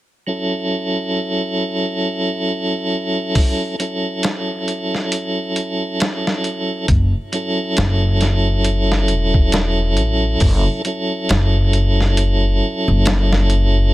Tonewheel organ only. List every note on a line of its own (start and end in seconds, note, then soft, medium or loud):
0.27 3.75 F#3 medium
0.27 3.76 C#4 medium
0.27 3.76 E4 medium
0.27 3.76 A4 medium
3.79 6.86 F#3 medium
3.79 6.86 C#4 medium
3.79 6.87 E4 medium
3.79 6.87 A4 medium
7.32 10.81 F#3 medium
7.32 10.82 C#4 medium
7.32 10.82 E4 medium
7.32 10.82 A4 medium
10.85 13.92 F#3 medium
10.85 13.93 C#4 medium
10.85 13.93 E4 medium
10.85 13.93 A4 medium